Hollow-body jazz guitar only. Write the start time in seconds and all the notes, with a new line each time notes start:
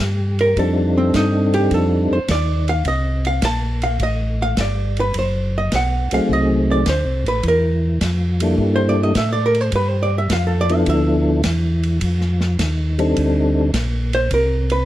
0.41 A#4
0.59 A4
0.98 C4
1.16 D#4
1.54 G4
1.74 A4
2.13 C5
2.31 D5
2.69 F5
2.88 D#5
3.27 F5
3.45 A5
3.83 F5
4.03 D#5
4.42 F5
4.61 D5
5.00 B4
5.19 C5
5.58 D#5
5.75 F#5
6.14 F5
6.33 D#5
6.71 D5
6.89 C5
7.28 B4
7.48 A#4
8.76 C5
8.89 D5
9.03 D#5
9.18 E5
9.33 D5
9.46 A#4
9.61 C5
9.76 B4
9.89 C5
10.03 D5
10.18 E5
10.33 F5
10.47 A4
10.61 D5
10.75 F5
10.89 E5
14.15 C5
14.34 A#4
14.72 B4